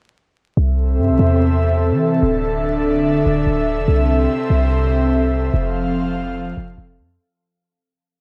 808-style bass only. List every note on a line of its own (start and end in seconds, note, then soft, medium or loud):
0.57 1.00 C2 loud
0.98 1.10 G2 loud
1.09 1.19 C2 medium
1.19 1.93 E2 loud
1.92 2.21 E3 loud
2.23 3.22 D1 loud
3.26 3.46 D1 loud
3.47 3.79 D1 loud
3.78 3.87 F1 loud
3.88 4.28 C2 loud
4.50 5.50 C2 loud
5.54 6.53 F1 loud
6.57 6.77 F1 loud
6.78 7.00 F1 loud
6.98 7.18 F2 loud